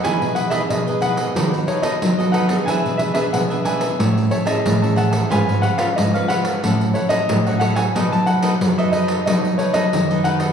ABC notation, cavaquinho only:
X:1
M:4/4
L:1/16
Q:1/4=91
K:E
V:1 name="Cavaquinho"
[EGBd]2 [EGBd] [EGBd] z [GBd] [EGBd] [GBd] [DABd]2 [DABd] [DABd] z [ABd] [DABd] [ABd] | [=DGBe]2 [DGBe] [DGBe] z [GBe] [DGBe] [GBe] [ce]2 [Gcea] [Gcea] z [cea] [Gcea] [cea] | [^EBc^e]2 [EBce] [EBce] z [Bce] [EBce] [Bce] [=EAcf]2 [EAcf] [EAcf] z [Acf] [EAcf] [Acf] | [DABd]2 [DABd] [DABd] z [ABd] [DABd] [ABd] [DABd]2 [DABd] [DABd] z [ABd] [DABd] [ABd] |]